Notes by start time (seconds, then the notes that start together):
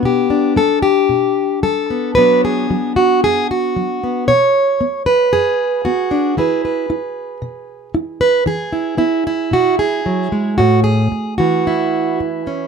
Already playing: B3 D4
0.03 B2 G4
0.30 D4
0.56 G3 A4
0.82 G4
1.09 B2
1.63 G3 A4
1.90 B3
2.15 B2 F#3 B3 D4 B4
2.45 G#4
2.71 F#3
2.96 F#4
3.23 F#2 G#4
3.51 F#4
3.76 F#3
4.04 B3
4.28 B2 C#5
4.81 B3
5.06 B4
5.33 F#2 G#4
5.85 B3 F#4
6.11 D4
6.37 E3 E4 G#4 B4
6.65 B4
6.90 E4
7.42 B2
7.95 E4
8.21 B4
8.46 E3 G#4
8.73 E4
8.98 B3 E4
9.27 E4
9.51 B2 F#4
9.79 G#4
10.06 F#3
10.32 G#3
10.58 A2 F#4
10.84 G#4
11.12 muted steel-string acoustic guitar stroke
11.38 E3 F#4
11.67 E4
12.20 muted steel-string acoustic guitar stroke
12.47 C#4